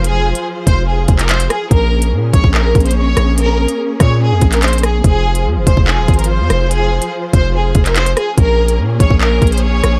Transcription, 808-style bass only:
\new Staff \with { instrumentName = "808-style bass" } { \clef bass \time 4/4 \key f \minor \tempo 4 = 144 f,,8. r8. f,,4 f,,4 r8 | bes,,4 bes,8 bes,,16 bes,,8. bes,,4 bes,,8~ | bes,,8. r8. bes,8. f,16 bes,,4. | f,,4 f,16 f,,16 f,,16 f,,8 ees,,16 aes,,8. f,16 f,,8~ |
f,,8. r8. f,,4 f,,4 r8 | bes,,4 bes,8 bes,,16 bes,,8. bes,,4 bes,,8 | }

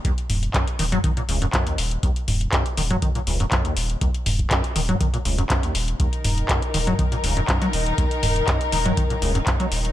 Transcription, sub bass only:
\new Staff \with { instrumentName = "Sub bass" } { \clef bass \time 4/4 \key ees \minor \tempo 4 = 121 r8 ees,,8 r8 ees,,8 r8 ees,,8 r8 ees,,8 | r8 ees,,8 r8 ees,,8 r8 ees,,8 r8 ees,,8 | r8 ees,,8 r8 ees,,8 r8 ees,,8 r8 ees,,8 | r8 ees,,8 r8 ees,,8 r8 ees,,8 r8 ees,,8 |
r8 ees,,8 r8 ees,,8 r8 ees,,8 r8 ees,,8 | }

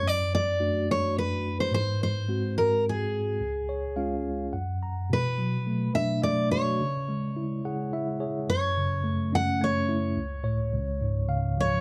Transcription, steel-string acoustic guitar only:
\new Staff \with { instrumentName = "Steel-string acoustic guitar" } { \time 3/4 \key cis \phrygian \tempo 4 = 107 d''8 d''4 cis''8 b'8. bis'16 | bis'8 bis'4 ais'8 gis'4~ | gis'2 r4 | \key b \dorian b'4. e''8 d''8 cis''8~ |
cis''2~ cis''8 r8 | cis''4. fis''8 cis''4~ | cis''2 r8 cis''8 | }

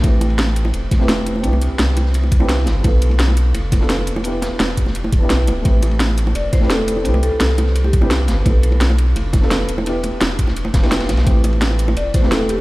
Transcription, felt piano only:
\new Staff \with { instrumentName = "Felt piano" } { \time 4/4 \key a \minor \tempo 4 = 171 <a c' e' g' b'>2~ <a c' e' g' b'>8. <a c' e' g' b'>16 r4 | <c' d' e' g' b'>2~ <c' d' e' g' b'>8. <c' d' e' g' b'>16 r4 | <b d' f' a' b'>2~ <b d' f' a' b'>8. <b d' f' a' b'>16 r4 | <b d' e' g' b'>2~ <b d' e' g' b'>8. <b d' e' g' b'>4~ <b d' e' g' b'>16 |
<a c' e' g' b'>2~ <a c' e' g' b'>8. <a c' e' g' b'>16 r4 | <c' d' e' g' b'>2~ <c' d' e' g' b'>8. <c' d' e' g' b'>16 r4 | <b d' f' a' b'>2~ <b d' f' a' b'>8. <b d' f' a' b'>16 r4 | <b d' e' g' b'>2~ <b d' e' g' b'>8. <b d' e' g' b'>4~ <b d' e' g' b'>16 |
<a c' e' g' b'>2~ <a c' e' g' b'>8. <a c' e' g' b'>16 r4 | }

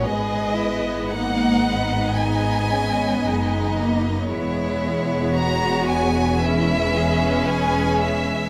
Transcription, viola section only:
\new Staff \with { instrumentName = "Viola section" } { \time 4/4 \key gis \minor \tempo 4 = 56 << { b2 gis4 gis8 ais8 | b2 cis'2 | } \\ { gis4 ais8 b2~ b8 | gis2 gis2 | } >> }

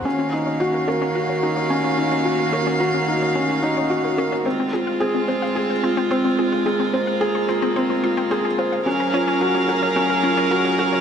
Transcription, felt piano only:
\new Staff \with { instrumentName = "Felt piano" } { \time 4/4 \key ees \dorian \tempo 4 = 109 des'8 ees'8 ges'8 bes'8 ges'8 ees'8 des'8 ees'8 | ges'8 bes'8 ges'8 ees'8 des'8 ees'8 ges'8 bes'8 | c'8 f'8 aes'8 c''8 aes'8 f'8 c'8 f'8 | aes'8 c''8 aes'8 f'8 c'8 f'8 aes'8 c''8 |
des'8 f'8 ges'8 bes'8 des'8 f'8 ges'8 bes'8 | }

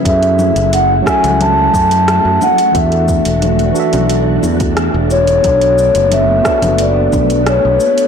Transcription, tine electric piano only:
\new Staff \with { instrumentName = "Tine electric piano" } { \time 4/4 \key b \dorian \tempo 4 = 89 <fis cis' gis' a' e''>4. <fis cis' fis' a' e''>2~ <fis cis' fis' a' e''>8 | <e d' fis' a' e''>4. <e d' fis' a' e''>2~ <e d' fis' a' e''>8 | <b d' fis' a' cis''>4. <b d' fis' a' b'>2~ <b d' fis' a' b'>8 | }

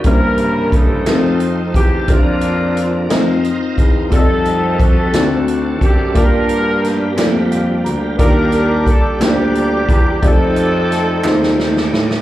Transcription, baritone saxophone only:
\new Staff \with { instrumentName = "Baritone saxophone" } { \clef bass \time 6/8 \key f \mixolydian \tempo 4. = 59 g,4. f,4 e,8 | f,4. f,8 r8 e,8 | f,4. d,4 fis,8 | g,4. f,4 d,8 |
ees,4 r8 d,4 e,8 | f,4. ees,4 a,8 | }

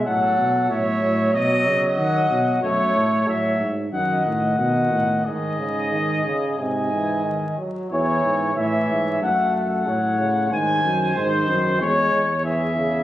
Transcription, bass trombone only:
\new Staff \with { instrumentName = "Bass trombone" } { \clef bass \time 4/4 \key b \dorian \tempo 4 = 92 a,8 b,8 a,8 a,8 b,8 cis8 dis8 b,8 | \key cis \minor fis,8 a,8 a,8 gis,8 fis,8 a,8 b,8 a,8 | gis,4. r8 gis,4. r8 | e,8 gis,8 a,8 gis,8 fis,4 a,4 |
gis,8 fis,8 gis,8 fis,8 e,8 e,4. | }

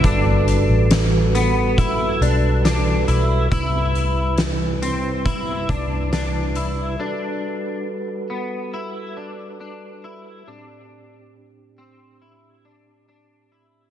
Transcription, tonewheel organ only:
\new Staff \with { instrumentName = "Tonewheel organ" } { \time 4/4 \key g \major \tempo 4 = 69 <g fis' a' b'>1 | <c g e' b'>1 | <fis' a' b'>1 | <a, c' d' g'>1 | }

